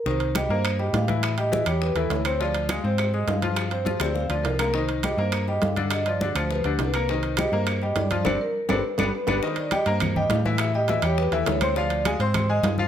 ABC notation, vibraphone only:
X:1
M:4/4
L:1/8
Q:1/4=205
K:Cm
V:1 name="Vibraphone"
c2 e c2 e f2 | =e _e2 z =B =A ^c2 | d2 f c2 e f2 | z c2 d f d B2 |
c2 e c2 e f2 | e d2 c =B G B2 | c2 e c2 e d d- | d B2 =B3 B2 |
c d e c2 e f2 | =e _e2 ^c =B =A c2 | d2 z c2 e f2 |]